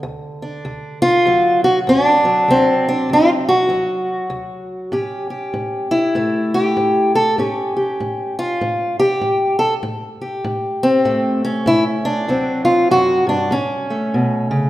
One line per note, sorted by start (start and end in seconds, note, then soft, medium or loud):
0.00 0.60 D2 medium
0.00 2.49 D3 soft
0.42 1.02 D4 soft
0.65 1.21 D2 medium
1.02 1.63 F4 loud
1.25 1.82 D2 medium
1.25 2.24 F#3 medium
1.64 1.78 F#4 medium
1.87 2.44 D2 medium
1.87 2.87 D4 loud
2.25 3.69 F#3 medium
2.48 3.05 D2 medium
2.48 3.48 C4 loud
2.89 3.11 D4 medium
3.10 3.66 D2 medium
3.10 3.29 F4 loud
3.49 4.93 F#4 medium
3.69 4.26 D2 medium
3.69 4.93 F#3 soft
4.30 4.87 D2 medium
4.92 5.49 A2 medium
4.92 5.91 C#4 soft
4.92 5.30 G4 soft
5.30 6.54 G4 soft
5.54 6.11 A2 medium
5.91 7.14 E4 medium
6.15 6.72 A2 medium
6.15 7.42 A3 soft
6.54 7.15 G4 medium
6.77 7.33 A2 medium
7.15 7.39 A4 medium
7.38 7.95 A2 medium
7.38 9.81 C#4 soft
7.38 7.76 G4 medium
7.76 8.38 G4 soft
8.00 8.57 A2 medium
8.39 8.99 F4 medium
8.61 9.18 A2 medium
8.99 9.58 G4 medium
9.21 9.78 A2 medium
9.59 9.74 A4 medium
9.83 10.40 A2 medium
10.21 11.67 G4 soft
10.44 11.01 A2 medium
10.83 11.44 C4 medium
11.05 11.62 A2 medium
11.05 12.28 A3 soft
11.45 12.29 C#4 medium
11.66 12.24 A2 medium
11.66 11.83 E4 loud
12.05 12.64 D4 loud
12.28 12.86 D2 medium
12.28 13.52 F#3 medium
12.28 13.50 C4 medium
12.65 12.90 F4 medium
12.91 13.26 F#2 medium
12.91 13.28 F#4 loud
13.27 13.52 G2 medium
13.27 13.53 D4 medium
13.51 14.08 A2 medium
13.51 14.70 C#4 medium
13.90 14.70 A3 soft
14.14 14.50 B2 medium
14.51 14.70 C#3 medium